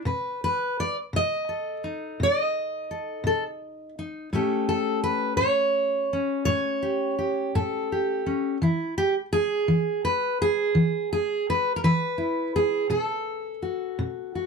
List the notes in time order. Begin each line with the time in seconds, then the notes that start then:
0.05 B2 B4
0.44 B4
0.80 D5
1.13 B2 D#5
1.49 A4
1.84 D#4
2.20 B2 D#5
2.91 A4
3.24 B2 A4
3.99 D#4
4.33 A2 A3 C#4 G4 A4
4.69 A4
5.04 B4
5.37 C#5
5.41 A2
6.13 C#4
6.45 A2 C#5
6.82 G4
7.19 G4
7.55 A2 A4
7.92 G4
8.26 C#4
8.62 E3 E4
8.98 G4
9.33 G#4
9.68 E3
10.05 B4
10.42 G#4
10.75 E3
11.13 G#4
11.50 B4
11.76 A#4
11.84 E3 B4
12.18 E4
12.56 G#4
12.90 B2 A4
13.62 F#4
13.99 B2
14.35 F#4